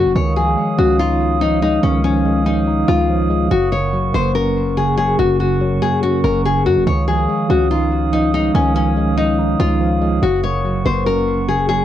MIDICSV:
0, 0, Header, 1, 5, 480
1, 0, Start_track
1, 0, Key_signature, -5, "major"
1, 0, Tempo, 419580
1, 177, Time_signature, 4, 2, 24, 8
1, 13555, End_track
2, 0, Start_track
2, 0, Title_t, "Glass harmonica"
2, 0, Program_c, 0, 92
2, 0, Note_on_c, 0, 70, 72
2, 0, Note_on_c, 0, 78, 65
2, 0, Note_on_c, 0, 85, 80
2, 139, Note_off_c, 0, 70, 0
2, 139, Note_off_c, 0, 78, 0
2, 139, Note_off_c, 0, 85, 0
2, 177, Note_on_c, 0, 73, 73
2, 177, Note_on_c, 0, 77, 68
2, 177, Note_on_c, 0, 87, 80
2, 3979, Note_off_c, 0, 73, 0
2, 3979, Note_off_c, 0, 77, 0
2, 3979, Note_off_c, 0, 87, 0
2, 4016, Note_on_c, 0, 70, 74
2, 4016, Note_on_c, 0, 78, 68
2, 4016, Note_on_c, 0, 85, 80
2, 7818, Note_off_c, 0, 70, 0
2, 7818, Note_off_c, 0, 78, 0
2, 7818, Note_off_c, 0, 85, 0
2, 7856, Note_on_c, 0, 73, 73
2, 7856, Note_on_c, 0, 77, 66
2, 7856, Note_on_c, 0, 87, 80
2, 11658, Note_off_c, 0, 73, 0
2, 11658, Note_off_c, 0, 77, 0
2, 11658, Note_off_c, 0, 87, 0
2, 11696, Note_on_c, 0, 70, 73
2, 11696, Note_on_c, 0, 78, 68
2, 11696, Note_on_c, 0, 85, 81
2, 13555, Note_off_c, 0, 70, 0
2, 13555, Note_off_c, 0, 78, 0
2, 13555, Note_off_c, 0, 85, 0
2, 13555, End_track
3, 0, Start_track
3, 0, Title_t, "Nylon-string guitar"
3, 0, Program_c, 1, 24
3, 0, Note_on_c, 1, 66, 88
3, 133, Note_off_c, 1, 66, 0
3, 178, Note_on_c, 1, 73, 90
3, 373, Note_off_c, 1, 73, 0
3, 416, Note_on_c, 1, 68, 81
3, 868, Note_off_c, 1, 68, 0
3, 897, Note_on_c, 1, 66, 80
3, 1093, Note_off_c, 1, 66, 0
3, 1137, Note_on_c, 1, 65, 95
3, 1588, Note_off_c, 1, 65, 0
3, 1616, Note_on_c, 1, 63, 90
3, 1812, Note_off_c, 1, 63, 0
3, 1857, Note_on_c, 1, 63, 84
3, 2053, Note_off_c, 1, 63, 0
3, 2094, Note_on_c, 1, 61, 96
3, 2291, Note_off_c, 1, 61, 0
3, 2334, Note_on_c, 1, 61, 87
3, 2787, Note_off_c, 1, 61, 0
3, 2813, Note_on_c, 1, 63, 82
3, 3266, Note_off_c, 1, 63, 0
3, 3297, Note_on_c, 1, 65, 102
3, 3974, Note_off_c, 1, 65, 0
3, 4016, Note_on_c, 1, 66, 92
3, 4212, Note_off_c, 1, 66, 0
3, 4256, Note_on_c, 1, 73, 76
3, 4708, Note_off_c, 1, 73, 0
3, 4739, Note_on_c, 1, 72, 91
3, 4934, Note_off_c, 1, 72, 0
3, 4975, Note_on_c, 1, 70, 77
3, 5427, Note_off_c, 1, 70, 0
3, 5458, Note_on_c, 1, 68, 82
3, 5653, Note_off_c, 1, 68, 0
3, 5691, Note_on_c, 1, 68, 87
3, 5889, Note_off_c, 1, 68, 0
3, 5936, Note_on_c, 1, 66, 94
3, 6132, Note_off_c, 1, 66, 0
3, 6177, Note_on_c, 1, 66, 78
3, 6628, Note_off_c, 1, 66, 0
3, 6657, Note_on_c, 1, 68, 98
3, 6852, Note_off_c, 1, 68, 0
3, 6896, Note_on_c, 1, 66, 90
3, 7092, Note_off_c, 1, 66, 0
3, 7138, Note_on_c, 1, 70, 79
3, 7333, Note_off_c, 1, 70, 0
3, 7384, Note_on_c, 1, 68, 89
3, 7577, Note_off_c, 1, 68, 0
3, 7619, Note_on_c, 1, 66, 84
3, 7813, Note_off_c, 1, 66, 0
3, 7859, Note_on_c, 1, 73, 89
3, 8054, Note_off_c, 1, 73, 0
3, 8097, Note_on_c, 1, 68, 80
3, 8548, Note_off_c, 1, 68, 0
3, 8579, Note_on_c, 1, 66, 82
3, 8774, Note_off_c, 1, 66, 0
3, 8817, Note_on_c, 1, 65, 93
3, 9268, Note_off_c, 1, 65, 0
3, 9298, Note_on_c, 1, 63, 86
3, 9493, Note_off_c, 1, 63, 0
3, 9540, Note_on_c, 1, 63, 86
3, 9734, Note_off_c, 1, 63, 0
3, 9778, Note_on_c, 1, 61, 99
3, 9973, Note_off_c, 1, 61, 0
3, 10017, Note_on_c, 1, 61, 86
3, 10468, Note_off_c, 1, 61, 0
3, 10495, Note_on_c, 1, 63, 83
3, 10947, Note_off_c, 1, 63, 0
3, 10979, Note_on_c, 1, 65, 103
3, 11655, Note_off_c, 1, 65, 0
3, 11698, Note_on_c, 1, 66, 92
3, 11893, Note_off_c, 1, 66, 0
3, 11936, Note_on_c, 1, 73, 78
3, 12388, Note_off_c, 1, 73, 0
3, 12419, Note_on_c, 1, 72, 92
3, 12613, Note_off_c, 1, 72, 0
3, 12657, Note_on_c, 1, 70, 79
3, 13108, Note_off_c, 1, 70, 0
3, 13139, Note_on_c, 1, 68, 83
3, 13334, Note_off_c, 1, 68, 0
3, 13372, Note_on_c, 1, 68, 85
3, 13555, Note_off_c, 1, 68, 0
3, 13555, End_track
4, 0, Start_track
4, 0, Title_t, "Tine electric piano"
4, 0, Program_c, 2, 4
4, 0, Control_c, 2, 64, 127
4, 0, Note_on_c, 2, 42, 95
4, 0, Note_on_c, 2, 49, 91
4, 0, Note_on_c, 2, 54, 85
4, 0, Note_on_c, 2, 58, 80
4, 0, Note_on_c, 2, 61, 97
4, 174, Note_off_c, 2, 61, 0
4, 176, Note_off_c, 2, 54, 0
4, 176, Note_on_c, 2, 51, 97
4, 178, Note_off_c, 2, 58, 0
4, 179, Note_off_c, 2, 49, 0
4, 193, Control_c, 2, 64, 0
4, 199, Note_off_c, 2, 42, 0
4, 388, Control_c, 2, 64, 127
4, 423, Note_on_c, 2, 53, 81
4, 652, Note_on_c, 2, 56, 92
4, 896, Note_on_c, 2, 61, 94
4, 1139, Note_on_c, 2, 63, 105
4, 1376, Note_off_c, 2, 51, 0
4, 1604, Note_off_c, 2, 53, 0
4, 1618, Note_on_c, 2, 53, 85
4, 1841, Note_off_c, 2, 56, 0
4, 1855, Note_on_c, 2, 56, 91
4, 2097, Note_off_c, 2, 61, 0
4, 2099, Note_on_c, 2, 51, 99
4, 2325, Note_off_c, 2, 53, 0
4, 2338, Note_off_c, 2, 63, 0
4, 2338, Note_on_c, 2, 53, 78
4, 2561, Note_off_c, 2, 56, 0
4, 2575, Note_on_c, 2, 56, 92
4, 2815, Note_on_c, 2, 61, 87
4, 3060, Note_on_c, 2, 63, 98
4, 3298, Note_off_c, 2, 51, 0
4, 3527, Note_off_c, 2, 53, 0
4, 3540, Note_on_c, 2, 53, 97
4, 3759, Note_off_c, 2, 56, 0
4, 3772, Note_on_c, 2, 56, 86
4, 4015, Note_off_c, 2, 56, 0
4, 4016, Note_off_c, 2, 61, 0
4, 4016, Note_on_c, 2, 42, 90
4, 4019, Note_off_c, 2, 53, 0
4, 4019, Note_off_c, 2, 63, 0
4, 4034, Control_c, 2, 64, 0
4, 4255, Note_on_c, 2, 49, 83
4, 4260, Control_c, 2, 64, 127
4, 4498, Note_on_c, 2, 54, 91
4, 4742, Note_on_c, 2, 58, 90
4, 4974, Note_on_c, 2, 61, 103
4, 5216, Note_off_c, 2, 42, 0
4, 5443, Note_off_c, 2, 49, 0
4, 5456, Note_on_c, 2, 49, 88
4, 5681, Note_off_c, 2, 54, 0
4, 5695, Note_on_c, 2, 54, 90
4, 5935, Note_on_c, 2, 42, 101
4, 5940, Note_off_c, 2, 58, 0
4, 6170, Note_off_c, 2, 49, 0
4, 6176, Note_off_c, 2, 61, 0
4, 6184, Note_on_c, 2, 49, 79
4, 6410, Note_off_c, 2, 54, 0
4, 6423, Note_on_c, 2, 54, 103
4, 6658, Note_on_c, 2, 58, 81
4, 6891, Note_on_c, 2, 61, 99
4, 7136, Note_off_c, 2, 42, 0
4, 7365, Note_off_c, 2, 49, 0
4, 7379, Note_on_c, 2, 49, 91
4, 7601, Note_off_c, 2, 54, 0
4, 7614, Note_on_c, 2, 54, 87
4, 7854, Note_off_c, 2, 61, 0
4, 7854, Note_on_c, 2, 51, 96
4, 7856, Note_off_c, 2, 54, 0
4, 7858, Note_off_c, 2, 49, 0
4, 7858, Note_off_c, 2, 58, 0
4, 7874, Control_c, 2, 64, 0
4, 8090, Control_c, 2, 64, 127
4, 8101, Note_on_c, 2, 53, 80
4, 8331, Note_on_c, 2, 56, 92
4, 8575, Note_on_c, 2, 61, 93
4, 8819, Note_on_c, 2, 63, 108
4, 9056, Note_off_c, 2, 51, 0
4, 9283, Note_off_c, 2, 53, 0
4, 9297, Note_on_c, 2, 53, 82
4, 9521, Note_off_c, 2, 56, 0
4, 9535, Note_on_c, 2, 56, 88
4, 9776, Note_off_c, 2, 61, 0
4, 9779, Note_on_c, 2, 51, 99
4, 10004, Note_off_c, 2, 53, 0
4, 10017, Note_on_c, 2, 53, 78
4, 10018, Note_off_c, 2, 63, 0
4, 10242, Note_off_c, 2, 56, 0
4, 10255, Note_on_c, 2, 56, 91
4, 10494, Note_on_c, 2, 61, 85
4, 10740, Note_on_c, 2, 63, 98
4, 10978, Note_off_c, 2, 51, 0
4, 11205, Note_off_c, 2, 53, 0
4, 11219, Note_on_c, 2, 53, 95
4, 11438, Note_off_c, 2, 56, 0
4, 11452, Note_on_c, 2, 56, 85
4, 11694, Note_off_c, 2, 56, 0
4, 11696, Note_off_c, 2, 61, 0
4, 11697, Note_on_c, 2, 42, 91
4, 11698, Note_off_c, 2, 53, 0
4, 11699, Note_off_c, 2, 63, 0
4, 11713, Control_c, 2, 64, 0
4, 11880, Control_c, 2, 64, 127
4, 11937, Note_on_c, 2, 49, 88
4, 12178, Note_on_c, 2, 54, 92
4, 12423, Note_on_c, 2, 58, 90
4, 12655, Note_on_c, 2, 61, 103
4, 12897, Note_off_c, 2, 42, 0
4, 13124, Note_off_c, 2, 49, 0
4, 13137, Note_on_c, 2, 49, 89
4, 13361, Note_off_c, 2, 54, 0
4, 13374, Note_on_c, 2, 54, 88
4, 13555, Note_off_c, 2, 49, 0
4, 13555, Note_off_c, 2, 54, 0
4, 13555, Note_off_c, 2, 58, 0
4, 13555, Note_off_c, 2, 61, 0
4, 13555, End_track
5, 0, Start_track
5, 0, Title_t, "808-style bass"
5, 0, Program_c, 3, 38
5, 58, Note_on_c, 3, 30, 103
5, 171, Note_off_c, 3, 30, 0
5, 178, Note_on_c, 3, 37, 106
5, 638, Note_off_c, 3, 37, 0
5, 898, Note_on_c, 3, 37, 106
5, 2052, Note_off_c, 3, 37, 0
5, 2097, Note_on_c, 3, 37, 110
5, 3251, Note_off_c, 3, 37, 0
5, 3297, Note_on_c, 3, 37, 103
5, 3988, Note_off_c, 3, 37, 0
5, 4017, Note_on_c, 3, 30, 113
5, 4708, Note_off_c, 3, 30, 0
5, 4737, Note_on_c, 3, 30, 106
5, 5891, Note_off_c, 3, 30, 0
5, 5937, Note_on_c, 3, 30, 110
5, 6628, Note_off_c, 3, 30, 0
5, 7136, Note_on_c, 3, 30, 109
5, 7617, Note_on_c, 3, 42, 106
5, 7634, Note_off_c, 3, 30, 0
5, 7737, Note_on_c, 3, 30, 104
5, 7754, Note_off_c, 3, 42, 0
5, 7851, Note_off_c, 3, 30, 0
5, 7856, Note_on_c, 3, 37, 108
5, 8318, Note_off_c, 3, 37, 0
5, 8576, Note_on_c, 3, 37, 103
5, 9731, Note_off_c, 3, 37, 0
5, 9777, Note_on_c, 3, 37, 114
5, 10931, Note_off_c, 3, 37, 0
5, 10977, Note_on_c, 3, 37, 108
5, 11668, Note_off_c, 3, 37, 0
5, 11697, Note_on_c, 3, 30, 115
5, 12388, Note_off_c, 3, 30, 0
5, 12417, Note_on_c, 3, 30, 104
5, 13555, Note_off_c, 3, 30, 0
5, 13555, End_track
0, 0, End_of_file